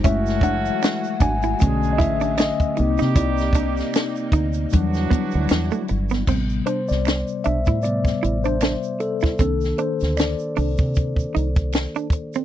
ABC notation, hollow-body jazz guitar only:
X:1
M:4/4
L:1/16
Q:"Swing 16ths" 1/4=77
K:Amix
V:1 name="Hollow-body jazz guitar"
C z D z3 D E z2 E D D z2 _E | E z D z3 _E z3 B, z2 A, z B, | =C z D z3 D E z2 E D D z2 E | =C z D z3 D z3 _E z2 D z C |]